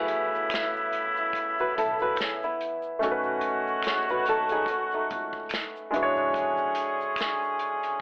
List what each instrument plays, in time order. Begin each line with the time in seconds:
Already playing: horn section C#3 B3 E4, grand piano A3 E4 F#4 G#4 B4
0.08 closed hi-hat
0.35 shaker
0.50 finger snap, snare, closed hi-hat, shaker
0.76 shaker
0.93 closed hi-hat, shaker
1.16 shaker
1.33 kick, closed hi-hat, shaker
1.58 nylon-string guitar F#4 B4, muted upright bass stroke, shaker
1.78 upright bass B1, nylon-string guitar E4 A4, kick, closed hi-hat
1.99 nylon-string guitar F#4 B4, shaker
2.16 finger snap, closed hi-hat, shaker
2.20 nylon-string guitar C#4 G#4, snare
2.43 nylon-string guitar B3 E4, shaker
2.61 closed hi-hat
2.82 shaker
2.99 horn section D#3 C#4 F#4, grand piano A3 C#4 D#4, closed hi-hat, shaker
3.03 upright bass B1, grand piano F#4 A4
3.11 grand piano B4
3.23 shaker
3.41 closed hi-hat
3.67 shaker
3.83 finger snap, closed hi-hat, shaker
3.87 nylon-string guitar G#4 C#5, snare
4.09 nylon-string guitar F#4 B4, shaker
4.26 upright bass D#2, nylon-string guitar D#4 A4, closed hi-hat, shaker
4.49 nylon-string guitar D#4 G#4, closed hi-hat, shaker
4.66 kick, closed hi-hat, shaker
4.70 nylon-string guitar C#4 F#4
4.92 nylon-string guitar A3 D#4, muted upright bass stroke, shaker
5.11 upright bass C#2, kick, closed hi-hat
5.33 kick, shaker
5.49 finger snap, closed hi-hat, shaker
5.54 snare
5.76 shaker
5.91 horn section D3 C#4 G#4, grand piano G#3 D4 E4, closed hi-hat
5.95 upright bass E2, grand piano F#4 B4
6.03 grand piano C#5
6.16 shaker
6.34 kick, closed hi-hat, shaker
6.57 shaker
6.75 closed hi-hat
7.01 shaker
7.16 finger snap, closed hi-hat, shaker
7.21 snare
7.43 shaker
7.59 closed hi-hat, shaker
7.83 closed hi-hat, shaker